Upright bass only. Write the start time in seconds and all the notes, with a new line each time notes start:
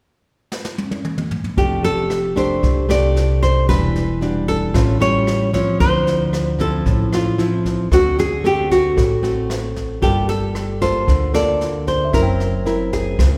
1.57 F1
2.63 C2
3.69 E1
4.74 A1
5.80 D2
6.86 A1
7.91 D2
8.97 A1
10.02 G1
11.08 D2
12.13 F#1
13.19 C#2